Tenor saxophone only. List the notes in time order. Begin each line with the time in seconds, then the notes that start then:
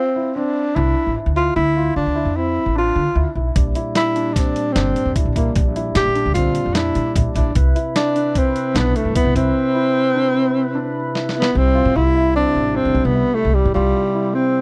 Already playing: C4
0.36 D4
0.76 E4
1.36 F4
1.56 E4
1.96 D4
2.37 E4
2.78 F4
3.97 E4
4.34 D4
4.72 C4
5.35 A#3
5.97 G4
6.34 F4
6.74 E4
7.36 D4
7.96 D4
8.38 C4
8.77 B3
8.96 A3
9.16 B3
9.36 C4
11.38 B3
11.57 C4
11.96 E4
12.36 D4
12.76 C4
13.05 B3
13.35 A3
13.55 G3
13.74 G3
14.35 C4